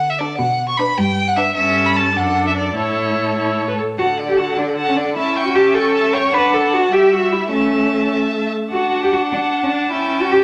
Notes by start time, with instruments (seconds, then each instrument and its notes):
Already playing: cello D3, violin F#5
0.10 violin E5
0.19 viola D4, violin A4 D5
0.38 cello B2, violin F#5
0.69 violin C#6
0.77 viola D4, violin B4 B5
0.98 cello G2, violin G5
1.28 violin F#5
1.36 viola D4, violin B4 E5
1.55 cello G2, viola C#4, violin A4 E5
1.86 violin B5
1.96 violin A5
2.15 cello F#2, viola D4, violin A4 F#5
2.48 violin E5
2.57 violin D5
2.76 cello A2, viola E4, violin A4 C#5
3.37 viola E4
3.69 viola B4
3.78 viola A4
3.98 viola D3, cello F#4, violin F#5 A5
4.18 violin D5 F#5
4.28 cello G4
4.37 cello F#4, violin F#5 A5
4.57 cello D4, violin D5 F#5
4.78 violin F#5 A5
4.88 cello C#4
4.96 cello D4, violin D5 F#5
5.16 viola C#4, cello E4, violin E5 A5
5.36 violin G5 C#6
5.46 cello F#4
5.55 cello G4, violin E5 A5
5.74 cello A4, violin G5 C#6
5.94 violin E5 A5
6.13 cello C#5, violin G5 C#6
6.33 viola D4, cello B4, violin F#5 A5
6.54 cello A4
6.74 cello F#4
6.92 viola G3, cello G4, violin E5
7.13 cello F#4
7.32 cello E4
7.51 viola A3, cello C#4, violin E5 A5
8.72 viola D4, cello F#4, violin F#5 A5
9.04 cello G4
9.12 cello F#4
9.32 cello D4
9.63 cello C#4
9.72 cello D4
9.92 viola C#4, cello E4, violin G5
10.22 cello F#4
10.31 cello G4